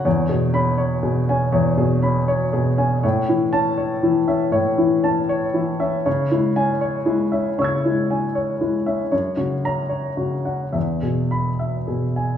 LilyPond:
<<
  \new Staff \with { instrumentName = "Upright piano" } { \time 4/4 \key e \major \tempo 4 = 79 << { \tuplet 3/2 { r4 b''8 } r2. | \tuplet 3/2 { r4 a''8 } r2. | \tuplet 3/2 { r4 gis''8 } r4 <cis''' e''' gis'''>2 | \tuplet 3/2 { r4 ais''8 } r4 \tuplet 3/2 { r4 b''8 } r4 | } \\ { \tuplet 3/2 { cis''8 gis'4 cis''8 gis'8 gis''8 cis''8 gis'8 b''8 cis''8 gis'8 gis''8 } | \tuplet 3/2 { cis''8 e'4 cis''8 e'8 e''8 cis''8 e'8 a''8 cis''8 e'8 e''8 } | \tuplet 3/2 { cis''8 e'4 cis''8 e'8 e''8 cis''8 e'8 gis''8 cis''8 e'8 e''8 } | \tuplet 3/2 { cis''8 fis'4 cis''8 fis'8 fis''8 e''8 gis'4 e''8 gis'8 gis''8 } | } >> }
  \new Staff \with { instrumentName = "Upright piano" } { \clef bass \time 4/4 \key e \major \tuplet 3/2 { e,8 b,8 cis'8~ cis'8 b,8 cis'8 e,8 b,8 cis'8~ cis'8 b,8 cis'8 } | \tuplet 3/2 { a,8 e8 cis'8~ cis'8 e8 cis'8 a,8 e8 cis'8~ cis'8 e8 cis'8 } | \tuplet 3/2 { cis8 gis8 cis'8~ cis'8 gis8 cis'8 cis8 gis8 cis'8~ cis'8 gis8 cis'8 } | \tuplet 3/2 { fis,8 cis8 cis'8~ cis'8 cis8 cis'8 e,8 b,4 r8 b,4 } | }
>>